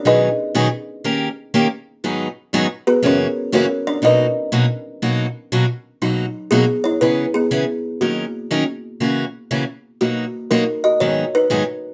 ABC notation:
X:1
M:4/4
L:1/8
Q:"Swing" 1/4=120
K:B
V:1 name="Kalimba"
[DGBd]2 z6 | z3 [B,FGB] [CFAc]2 [CFAc] [=D=d] | [DABd]2 z6 | [F,D]2 [B,G] [Ec] [EB] [B,G]3 |
[A,F]6 z2 | [A,F]2 [DA] [Fd] [Fc] [DB]3 |]
V:2 name="Steel-string acoustic guitar"
[B,,D,F,B,DG] z [B,,D,F,B,DG] z [D,A,C=GA] z [D,A,CGA] z | [G,,D,F,B,DG] z [G,,D,F,B,DG] z [F,,C,E,A,CF] z [F,,C,E,A,CF] z | [B,,F,A,DF] z [B,,F,A,DF] z [B,,F,A,DF] z [B,,F,A,DF] z | [B,,F,A,DF] z [B,,F,A,DF] z [C,E,B,CG] z [C,E,B,CG] z |
[D,F,CDA] z [D,F,CDA] z [C,E,A,CF] z [C,E,A,CF] z | [B,,F,A,DF] z [B,,F,A,DF] z [G,,D,F,B,DG] z [G,,D,F,B,DG] z |]